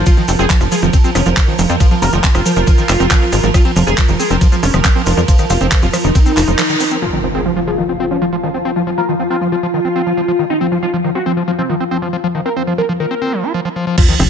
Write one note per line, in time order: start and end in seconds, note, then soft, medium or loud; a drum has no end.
0.00 7.01 F3 medium
0.06 0.10 F3 loud
0.06 0.13 F4 loud
0.06 7.04 A#4 medium
0.06 kick loud
0.06 closed hi-hat medium
0.06 ride medium
0.06 cabasa medium
0.17 0.24 D#3 medium
0.17 0.24 F3 medium
0.17 closed hi-hat soft
0.28 0.36 F1 loud
0.28 0.35 F3 medium
0.28 0.32 C4 medium
0.28 open hi-hat loud
0.28 cabasa loud
0.39 0.47 F1 medium
0.39 0.45 C4 loud
0.39 0.46 G#4 loud
0.39 closed hi-hat soft
0.39 cabasa soft
0.50 0.56 F3 medium
0.50 0.57 F3 medium
0.50 kick loud
0.50 clap loud
0.50 closed hi-hat medium
0.50 ride medium
0.50 cabasa medium
0.61 0.69 F1 medium
0.61 0.65 F3 loud
0.61 0.67 F3 medium
0.61 cross-stick soft
0.61 closed hi-hat soft
0.61 cabasa soft
0.72 0.75 F3 loud
0.72 0.78 G#4 medium
0.72 open hi-hat loud
0.72 cabasa medium
0.83 0.90 F1 medium
0.83 0.89 D#3 medium
0.83 0.89 F3 medium
0.83 cabasa soft
0.93 0.97 C4 medium
0.93 kick loud
0.93 closed hi-hat medium
0.93 ride medium
0.93 cabasa medium
1.04 1.11 F3 medium
1.04 1.11 C4 loud
1.04 closed hi-hat soft
1.04 cabasa soft
1.15 1.23 F1 medium
1.15 1.21 F3 medium
1.15 1.22 C#4 medium
1.15 cross-stick medium
1.15 open hi-hat loud
1.15 cabasa medium
1.26 1.34 F1 medium
1.26 1.30 F3 loud
1.26 1.33 F3 medium
1.26 closed hi-hat soft
1.26 cabasa soft
1.37 1.41 F3 loud
1.37 kick loud
1.37 clap loud
1.37 closed hi-hat medium
1.37 ride medium
1.37 cabasa medium
1.48 1.54 D#3 medium
1.48 1.54 F3 medium
1.59 1.66 F1 loud
1.59 1.65 F3 medium
1.59 1.62 C4 medium
1.59 open hi-hat loud
1.59 cabasa loud
1.69 1.77 F2 medium
1.69 1.76 C4 loud
1.69 closed hi-hat soft
1.69 cabasa soft
1.80 1.87 F3 medium
1.80 kick loud
1.80 cross-stick soft
1.80 closed hi-hat medium
1.80 ride medium
1.80 cabasa medium
1.91 1.95 F3 loud
1.91 1.98 F3 medium
1.91 closed hi-hat soft
2.02 2.10 F1 loud
2.02 2.06 F3 loud
2.02 2.09 A#4 medium
2.02 open hi-hat loud
2.02 cabasa medium
2.12 2.21 F1 medium
2.12 2.19 D#3 medium
2.12 2.20 F3 medium
2.12 cabasa soft
2.24 2.30 F3 medium
2.24 2.28 C4 medium
2.24 kick loud
2.24 clap loud
2.24 closed hi-hat loud
2.24 ride medium
2.24 cabasa medium
2.35 2.42 F1 medium
2.35 2.41 C4 loud
2.35 2.41 F4 medium
2.35 cross-stick medium
2.35 closed hi-hat soft
2.35 cabasa soft
2.46 2.52 F3 medium
2.46 open hi-hat loud
2.46 cabasa loud
2.56 2.64 F1 medium
2.56 2.60 F3 loud
2.56 3.46 F4 loud
2.56 closed hi-hat soft
2.56 cabasa soft
2.67 2.71 F3 loud
2.67 kick loud
2.67 closed hi-hat medium
2.67 ride medium
2.67 cabasa soft
2.78 2.85 D#3 medium
2.78 closed hi-hat soft
2.78 cabasa soft
2.89 2.97 F1 loud
2.89 2.93 C4 medium
2.89 clap medium
2.89 open hi-hat loud
2.89 cabasa loud
3.00 3.08 F1 medium
3.00 3.06 C4 loud
3.00 cross-stick soft
3.00 closed hi-hat soft
3.00 cabasa soft
3.10 3.17 F3 medium
3.10 kick loud
3.10 clap loud
3.10 closed hi-hat medium
3.10 ride medium
3.10 cabasa medium
3.22 3.25 F3 loud
3.32 3.40 G#1 loud
3.32 3.36 F3 loud
3.32 open hi-hat loud
3.32 cabasa medium
3.43 3.51 G#1 medium
3.43 3.50 D#3 medium
3.43 closed hi-hat soft
3.43 cabasa soft
3.54 3.58 C4 medium
3.54 3.61 F4 loud
3.54 kick loud
3.54 cross-stick medium
3.54 closed hi-hat loud
3.54 ride medium
3.54 cabasa medium
3.65 3.72 F3 medium
3.65 3.71 C4 loud
3.65 closed hi-hat soft
3.76 3.84 F1 loud
3.76 3.82 F3 medium
3.76 3.83 F3 medium
3.76 open hi-hat loud
3.76 cabasa loud
3.87 3.95 F1 medium
3.87 3.91 F3 loud
3.87 3.93 G#4 medium
3.87 cabasa soft
3.97 4.02 F3 loud
3.97 4.04 F3 medium
3.97 kick loud
3.97 clap loud
3.97 closed hi-hat loud
3.97 ride medium
3.97 cabasa medium
4.08 4.16 F1 medium
4.08 4.15 D#3 medium
4.08 4.15 F3 medium
4.08 closed hi-hat soft
4.08 cabasa soft
4.19 4.23 C4 medium
4.19 4.26 G#4 medium
4.19 open hi-hat loud
4.19 cabasa medium
4.30 4.38 F1 medium
4.30 4.37 F3 medium
4.30 4.37 C4 loud
4.30 closed hi-hat soft
4.30 cabasa soft
4.41 4.48 F3 medium
4.41 kick loud
4.41 closed hi-hat loud
4.41 ride medium
4.41 cabasa medium
4.52 4.56 F3 loud
4.52 4.59 F3 medium
4.52 closed hi-hat soft
4.52 cabasa soft
4.63 4.71 F1 loud
4.63 4.67 F3 loud
4.63 4.70 C#4 medium
4.63 open hi-hat loud
4.63 cabasa medium
4.74 4.82 F1 medium
4.74 4.80 D#3 medium
4.74 4.80 F3 medium
4.74 cross-stick medium
4.74 closed hi-hat soft
4.74 cabasa soft
4.84 4.88 C4 medium
4.84 kick loud
4.84 clap loud
4.84 closed hi-hat loud
4.84 ride medium
4.84 cabasa soft
4.96 5.02 F3 medium
4.96 5.02 C4 loud
5.06 5.14 F1 loud
5.06 5.13 F3 medium
5.06 open hi-hat loud
5.06 cabasa medium
5.17 5.25 F2 medium
5.17 5.21 F3 loud
5.17 closed hi-hat soft
5.17 cabasa soft
5.28 5.32 F3 loud
5.28 5.35 F3 medium
5.28 kick loud
5.28 closed hi-hat loud
5.28 ride medium
5.28 cabasa medium
5.38 5.45 D#3 medium
5.38 5.46 F3 medium
5.38 cross-stick soft
5.38 closed hi-hat soft
5.38 cabasa soft
5.50 5.58 F1 loud
5.50 5.54 C4 medium
5.50 5.57 F4 loud
5.50 open hi-hat loud
5.50 cabasa loud
5.61 5.69 F1 medium
5.61 5.67 F3 medium
5.61 5.67 C4 loud
5.61 closed hi-hat soft
5.61 cabasa soft
5.71 5.78 F3 medium
5.71 kick loud
5.71 clap loud
5.71 closed hi-hat loud
5.71 ride medium
5.71 cabasa medium
5.83 5.90 F1 medium
5.83 5.86 F3 loud
5.83 5.89 F4 medium
5.83 closed hi-hat soft
5.83 cabasa soft
5.93 5.97 F3 loud
5.93 6.00 F3 medium
5.93 cross-stick medium
5.93 open hi-hat loud
5.93 cabasa medium
6.04 6.12 F1 medium
6.04 6.11 D#3 medium
6.04 6.93 D#4 loud
6.04 closed hi-hat soft
6.04 cabasa soft
6.15 6.19 C4 medium
6.15 kick loud
6.15 closed hi-hat loud
6.15 ride medium
6.15 cabasa soft
6.26 6.32 C4 loud
6.26 closed hi-hat soft
6.26 cabasa soft
6.37 6.45 F1 loud
6.37 6.43 F3 medium
6.37 clap medium
6.37 open hi-hat loud
6.37 cabasa medium
6.48 6.55 F1 medium
6.48 6.52 F3 loud
6.48 closed hi-hat soft
6.48 cabasa soft
6.59 6.62 F3 loud
6.59 cross-stick soft
6.59 clap loud
6.59 closed hi-hat loud
6.59 ride medium
6.59 cabasa soft
6.69 6.76 D#3 medium
6.69 cabasa soft
6.80 6.84 C4 medium
6.80 open hi-hat loud
6.80 cabasa medium
6.91 6.98 C4 loud
6.91 closed hi-hat soft
6.91 cabasa soft
7.02 7.06 F3 loud
7.02 13.54 F3 medium
7.02 13.54 F4 medium
7.02 7.09 F4 loud
7.02 impact medium
7.13 7.19 D#3 medium
7.13 7.20 F3 medium
7.24 7.30 F3 medium
7.24 7.28 C4 medium
7.35 7.41 C4 loud
7.35 7.41 G#4 medium
7.46 7.52 F3 medium
7.56 7.60 F3 loud
7.56 7.63 F3 medium
7.67 7.71 F3 loud
7.67 7.74 G#4 medium
7.78 7.84 D#3 medium
7.78 7.85 F3 medium
7.89 7.93 C4 medium
8.00 8.07 F3 medium
8.00 8.06 C4 loud
8.11 8.17 F3 medium
8.11 8.17 C#4 medium
8.22 8.25 F3 loud
8.22 8.28 F3 medium
8.32 8.36 F3 loud
8.43 8.50 D#3 medium
8.43 8.50 F3 medium
8.54 8.61 F3 medium
8.54 8.58 C4 medium
8.65 8.71 C4 loud
8.76 8.83 F3 medium
8.76 8.82 F3 medium
8.87 8.93 F3 medium
8.87 8.91 F3 loud
8.98 9.02 F3 loud
8.98 9.04 A#4 medium
9.09 9.15 D#3 medium
9.09 9.15 F3 medium
9.19 9.26 F3 medium
9.19 9.23 C4 medium
9.30 9.37 C4 loud
9.30 9.37 F4 medium
9.41 9.48 F3 medium
9.52 9.56 F3 loud
9.52 10.41 F4 loud
9.63 9.67 F3 loud
9.74 9.80 D#3 medium
9.85 9.88 C4 medium
9.96 10.02 C4 medium
10.06 10.13 F3 medium
10.17 10.21 F3 loud
10.28 10.32 F3 loud
10.39 10.45 D#3 medium
10.50 10.54 C4 medium
10.50 10.57 D#4 loud
10.61 10.67 F3 medium
10.61 10.67 C4 loud
10.72 10.78 F3 medium
10.83 10.86 F3 loud
10.83 10.89 F4 medium
10.93 11.00 F3 medium
10.93 10.97 F3 loud
11.04 11.11 D#3 medium
11.04 11.11 F3 medium
11.15 11.19 C4 medium
11.15 11.22 F#4 medium
11.26 11.33 F3 medium
11.26 11.32 C4 loud
11.37 11.43 F3 medium
11.48 11.52 F3 loud
11.48 11.54 F3 medium
11.59 11.62 F3 loud
11.59 11.65 C4 medium
11.69 11.76 D#3 medium
11.69 11.76 F3 medium
11.80 11.84 C4 medium
11.91 11.98 F3 medium
11.91 11.98 C4 loud
12.02 12.08 F3 medium
12.02 12.09 F3 medium
12.13 12.17 F3 loud
12.24 12.28 F3 loud
12.24 12.30 F3 medium
12.35 12.41 D#3 medium
12.35 12.41 F3 medium
12.46 12.49 C4 medium
12.46 12.52 A#4 medium
12.56 12.63 F3 medium
12.56 12.63 C4 loud
12.67 12.74 F3 medium
12.78 12.82 F3 loud
12.78 12.85 A#4 medium
12.89 12.96 F3 medium
12.89 12.93 F3 loud
13.00 13.06 D#3 medium
13.00 13.54 A#4 medium
13.11 13.15 C4 medium
13.22 13.34 C4 loud
13.32 13.45 F3 medium
13.43 13.53 F4 medium
13.54 13.61 F3 loud
13.65 13.69 F3 loud
13.76 13.85 F3 medium
13.87 13.96 F3 medium
13.98 14.30 F3 medium
13.98 14.30 F4 medium
13.98 14.04 F4 loud
13.98 kick loud
13.98 closed hi-hat loud
13.98 crash loud
13.98 sub drop medium
14.09 14.15 D#3 medium
14.09 14.15 F3 medium
14.09 closed hi-hat soft
14.19 14.27 F1 loud
14.19 14.26 F3 medium
14.19 14.23 C4 medium
14.19 cross-stick soft
14.19 open hi-hat loud